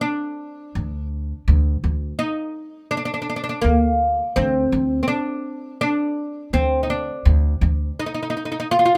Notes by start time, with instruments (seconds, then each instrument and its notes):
0.01 oud D4
0.75 upright bass D2
1.48 upright bass D2
1.84 upright bass D2
2.19 oud D#4
2.91 oud D4
2.97 oud D4
3.05 oud D4
3.14 oud D4
3.22 oud D4
3.29 oud D4
3.36 oud D4
3.44 oud D4
3.49 oud D4
3.62 upright bass D2, oud A#3
4.36 upright bass D2, oud C4
4.72 upright bass D2
5.03 oud C4
5.08 oud D4
5.81 oud D4
6.53 upright bass D2, oud C4
6.83 oud D#4
6.90 oud D4
7.25 upright bass D2
7.61 upright bass D2
7.99 oud D#4
8.06 oud D#4
8.14 oud D#4
8.23 oud D#4
8.30 oud D#4
8.37 oud D#4
8.45 oud D#4
8.52 oud D#4
8.60 oud D#4
8.71 oud F4
8.79 oud F4
8.85 oud F4